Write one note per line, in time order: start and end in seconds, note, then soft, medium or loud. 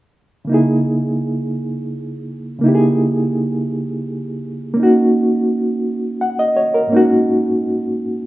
0.45 2.57 C#3 medium
0.45 2.58 A#3 medium
0.49 2.59 D#4 soft
0.49 2.61 E4 soft
0.54 2.62 G#4 medium
2.59 4.71 C#3 medium
2.59 4.73 A#3 soft
2.64 4.74 D#4 soft
2.64 4.75 E4 soft
2.68 2.72 G4 soft
2.75 4.79 G#4 medium
4.74 6.86 A#3 medium
4.74 6.87 C#4 soft
4.80 6.89 D#4 soft
4.80 6.91 F#4 medium
6.21 6.38 F#5 soft
6.39 6.56 D#5 medium
6.57 6.73 C#5 medium
6.74 7.08 A#4 medium
6.87 8.26 G#2 medium
6.87 8.26 A#3 medium
6.92 8.26 C#4 medium
6.92 8.26 D#4 medium
6.97 8.26 F#4 medium